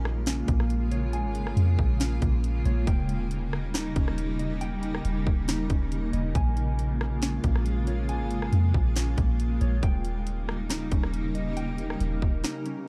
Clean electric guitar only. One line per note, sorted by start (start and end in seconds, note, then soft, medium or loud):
0.00 0.70 G#5 loud
0.27 1.57 C#4 medium
0.48 1.79 A#3 medium
0.92 2.22 C#5 medium
1.13 2.44 G#5 loud
2.00 2.87 C#4 medium
2.21 2.87 A#3 medium
2.66 2.87 C#5 medium
2.87 4.18 G5 loud
3.74 5.05 D#4 loud
3.96 5.26 C#4 medium
4.39 5.70 D#5 medium
4.61 5.92 G5 loud
5.48 6.35 D#4 medium
5.71 6.36 C#4 medium
6.13 6.35 D#5 medium
6.35 7.65 G#5 loud
7.23 8.53 C#4 loud
7.44 8.74 A#3 medium
7.87 9.18 C#5 medium
8.09 9.39 G#5 loud
8.96 9.83 C#4 medium
9.17 9.83 A#3 medium
9.61 9.83 C#5 medium
9.83 11.13 G5 loud
10.70 12.00 D#4 loud
10.92 12.22 C#4 medium
11.35 12.65 D#5 medium
11.57 12.87 G5 loud
12.44 12.88 D#4 medium
12.66 12.88 C#4 medium